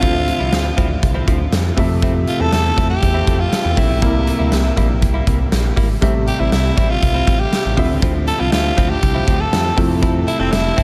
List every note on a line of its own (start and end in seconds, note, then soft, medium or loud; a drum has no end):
0.00 0.31 D2 loud
0.00 1.73 D3 medium
0.00 1.73 F3 medium
0.00 0.19 F3 medium
0.00 1.74 C4 medium
0.00 0.15 C4 medium
0.00 0.14 E4 medium
0.00 0.73 F4 loud
0.00 1.74 E5 medium
0.00 kick medium
0.00 closed hi-hat medium
0.15 muted clean electric guitar stroke soft
0.27 muted clean electric guitar stroke soft
0.27 closed hi-hat medium
0.40 0.50 C2 medium
0.40 0.53 F3 soft
0.40 0.53 C4 medium
0.40 0.53 E4 medium
0.52 0.71 D2 medium
0.52 snare loud
0.52 closed hi-hat medium
0.65 muted clean electric guitar stroke soft
0.77 0.96 D2 medium
0.77 0.94 F3 medium
0.77 0.90 C4 medium
0.77 0.89 E4 medium
0.77 kick medium
0.77 closed hi-hat medium
0.90 muted clean electric guitar stroke soft
1.02 1.22 C2 medium
1.02 muted clean electric guitar stroke soft
1.02 kick medium
1.02 closed hi-hat medium
1.14 1.26 F3 medium
1.14 1.26 C4 medium
1.14 1.27 E4 medium
1.27 1.46 D2 medium
1.27 1.40 F3 medium
1.27 1.39 C4 medium
1.27 1.38 E4 medium
1.27 kick medium
1.27 closed hi-hat medium
1.40 muted clean electric guitar stroke soft
1.52 1.71 F2 medium
1.52 snare loud
1.52 closed hi-hat medium
1.65 muted clean electric guitar stroke soft
1.76 2.24 F2 medium
1.76 3.73 C3 medium
1.76 3.73 F3 medium
1.76 1.94 A3 medium
1.76 3.74 A3 medium
1.76 1.89 C4 medium
1.76 1.88 E4 medium
1.76 3.74 E5 medium
1.76 kick medium
1.76 open hi-hat medium
1.90 muted clean electric guitar stroke soft
2.02 2.19 A3 medium
2.02 2.14 C4 medium
2.02 2.13 E4 loud
2.02 kick loud
2.02 closed hi-hat medium
2.15 muted clean electric guitar stroke soft
2.27 2.42 F4 medium
2.27 muted clean electric guitar stroke soft
2.27 closed hi-hat medium
2.39 2.49 E2 medium
2.39 2.53 A3 medium
2.39 2.53 C4 medium
2.39 2.53 E4 medium
2.39 2.53 A4 loud
2.52 2.71 E2 medium
2.52 2.88 A4 loud
2.52 snare loud
2.52 closed hi-hat medium
2.65 muted clean electric guitar stroke soft
2.77 2.96 F2 medium
2.77 2.94 A3 medium
2.77 2.89 C4 medium
2.77 2.88 E4 medium
2.77 kick medium
2.77 closed hi-hat medium
2.89 3.42 G4 loud
2.89 muted clean electric guitar stroke soft
3.02 3.21 E2 loud
3.02 muted clean electric guitar stroke soft
3.02 kick medium
3.02 closed hi-hat medium
3.14 3.25 A3 medium
3.14 3.26 C4 medium
3.14 3.27 E4 medium
3.27 3.46 F2 medium
3.27 3.40 A3 medium
3.27 3.39 C4 medium
3.27 3.38 E4 medium
3.27 kick medium
3.27 closed hi-hat medium
3.39 3.79 F4 medium
3.39 muted clean electric guitar stroke soft
3.52 muted clean electric guitar stroke soft
3.52 snare loud
3.52 closed hi-hat medium
3.64 3.74 E2 medium
3.64 muted clean electric guitar stroke medium
3.76 3.87 A#1 medium
3.76 3.89 A3 medium
3.76 3.89 C4 medium
3.76 3.88 E4 medium
3.76 4.78 E4 medium
3.76 kick medium
3.76 open hi-hat medium
3.89 3.99 B1 medium
3.89 4.01 A3 soft
3.89 4.02 C4 medium
3.89 4.02 E4 medium
4.01 4.31 C2 loud
4.01 5.98 C3 medium
4.01 4.19 G3 medium
4.01 5.98 G3 medium
4.01 4.14 A#3 medium
4.01 5.99 A#3 medium
4.01 4.13 E4 medium
4.01 5.99 E4 medium
4.01 kick loud
4.01 closed hi-hat medium
4.14 muted clean electric guitar stroke soft
4.27 muted clean electric guitar stroke soft
4.27 closed hi-hat medium
4.39 4.49 D2 medium
4.39 4.53 G3 soft
4.39 4.53 A#3 medium
4.39 4.52 E4 medium
4.52 4.71 C2 loud
4.52 snare loud
4.52 closed hi-hat medium
4.64 muted clean electric guitar stroke soft
4.76 5.04 A#1 loud
4.76 4.94 G3 medium
4.76 4.89 A#3 medium
4.76 4.88 E4 medium
4.76 kick medium
4.76 closed hi-hat medium
4.89 muted clean electric guitar stroke soft
5.02 5.21 C2 medium
5.02 muted clean electric guitar stroke soft
5.02 kick medium
5.02 closed hi-hat medium
5.14 5.26 G3 medium
5.14 5.26 A#3 medium
5.14 5.27 E4 medium
5.27 5.46 C2 medium
5.27 5.40 G3 medium
5.27 5.39 A#3 medium
5.27 5.38 E4 medium
5.27 kick medium
5.27 closed hi-hat medium
5.39 muted clean electric guitar stroke medium
5.52 5.71 A#1 loud
5.52 snare loud
5.52 closed hi-hat medium
5.64 muted clean electric guitar stroke soft
5.76 5.96 G#1 medium
5.76 5.93 G3 medium
5.76 5.89 A#3 medium
5.76 5.88 E4 medium
5.76 kick medium
5.76 open hi-hat medium
5.89 muted clean electric guitar stroke soft
6.01 6.30 A1 loud
6.01 7.73 C3 medium
6.01 6.19 G3 medium
6.01 7.74 G3 medium
6.01 7.74 A3 medium
6.01 6.14 C4 medium
6.01 6.13 E4 medium
6.01 7.74 E5 medium
6.01 kick loud
6.01 closed hi-hat medium
6.14 muted clean electric guitar stroke soft
6.27 6.42 G4 loud
6.27 muted clean electric guitar stroke soft
6.27 closed hi-hat medium
6.39 6.49 A1 medium
6.39 6.53 G3 soft
6.39 6.53 C4 medium
6.39 6.53 E4 medium
6.39 6.52 E4 medium
6.52 6.71 C2 medium
6.52 6.92 E4 medium
6.52 snare loud
6.52 closed hi-hat medium
6.64 muted clean electric guitar stroke soft
6.77 6.96 A1 medium
6.77 6.94 G3 medium
6.77 6.89 C4 medium
6.77 6.88 E4 medium
6.77 kick medium
6.77 closed hi-hat medium
6.89 7.42 F4 medium
6.89 muted clean electric guitar stroke soft
7.02 7.21 C2 medium
7.02 muted clean electric guitar stroke soft
7.02 kick medium
7.02 closed hi-hat medium
7.14 7.26 G3 medium
7.14 7.26 C4 medium
7.14 7.27 E4 medium
7.27 7.46 A1 medium
7.27 7.40 G3 medium
7.27 7.39 C4 medium
7.27 7.38 E4 medium
7.27 kick medium
7.27 closed hi-hat medium
7.39 7.78 G4 medium
7.39 muted clean electric guitar stroke soft
7.52 muted clean electric guitar stroke soft
7.52 snare loud
7.52 closed hi-hat medium
7.64 7.74 A1 medium
7.64 muted clean electric guitar stroke soft
7.77 7.87 D2 loud
7.77 9.73 D3 medium
7.77 7.90 F3 medium
7.77 9.73 F3 medium
7.77 7.89 C4 medium
7.77 9.74 C4 medium
7.77 7.88 E4 medium
7.77 9.74 E5 medium
7.77 kick medium
7.77 open hi-hat medium
7.89 7.99 C#2 medium
7.89 8.01 F3 soft
7.89 8.01 C4 soft
7.89 8.02 E4 medium
8.02 8.31 D2 loud
8.02 8.19 F3 medium
8.02 8.14 C4 medium
8.02 8.13 E4 medium
8.02 kick loud
8.02 closed hi-hat medium
8.14 muted clean electric guitar stroke soft
8.27 8.42 A4 loud
8.27 muted clean electric guitar stroke soft
8.27 closed hi-hat medium
8.39 8.50 C2 medium
8.39 8.53 F3 medium
8.39 8.53 C4 medium
8.39 8.53 E4 medium
8.39 8.52 F4 medium
8.52 8.71 D2 medium
8.52 8.92 F4 medium
8.52 snare loud
8.52 closed hi-hat medium
8.64 muted clean electric guitar stroke soft
8.77 8.96 D2 medium
8.77 8.94 F3 medium
8.77 8.89 C4 medium
8.77 8.88 E4 loud
8.77 kick medium
8.77 closed hi-hat medium
8.89 9.42 G4 medium
8.89 muted clean electric guitar stroke medium
9.02 9.21 C2 loud
9.02 muted clean electric guitar stroke soft
9.02 kick medium
9.02 closed hi-hat medium
9.15 9.26 F3 medium
9.15 9.26 C4 medium
9.15 9.27 E4 medium
9.27 9.46 D2 medium
9.27 9.40 F3 medium
9.27 9.39 C4 medium
9.27 9.38 E4 medium
9.27 kick medium
9.27 closed hi-hat medium
9.40 9.78 A4 medium
9.40 muted clean electric guitar stroke medium
9.53 9.71 F2 medium
9.53 snare loud
9.53 closed hi-hat medium
9.65 muted clean electric guitar stroke medium
9.77 10.24 F2 medium
9.77 10.83 C3 medium
9.77 10.83 F3 medium
9.77 10.83 A3 medium
9.77 9.94 C4 medium
9.77 9.89 E4 medium
9.77 10.83 E4 medium
9.77 9.88 A4 medium
9.77 kick medium
9.77 open hi-hat medium
9.89 muted clean electric guitar stroke soft
10.02 10.19 C4 medium
10.02 10.14 E4 loud
10.02 10.13 A4 loud
10.02 kick loud
10.02 closed hi-hat medium
10.15 muted clean electric guitar stroke soft
10.27 10.41 E4 loud
10.27 muted clean electric guitar stroke soft
10.27 closed hi-hat medium
10.40 10.49 F1 medium
10.40 10.54 C4 medium
10.40 10.53 C4 medium
10.40 10.53 E4 medium
10.40 10.53 A4 medium
10.52 10.71 F1 medium
10.52 10.83 E4 loud
10.52 snare loud
10.52 closed hi-hat medium
10.65 muted clean electric guitar stroke soft
10.77 10.83 G1 medium
10.77 10.83 C4 medium
10.77 10.83 E4 medium
10.77 10.83 A4 medium
10.77 kick medium
10.77 closed hi-hat medium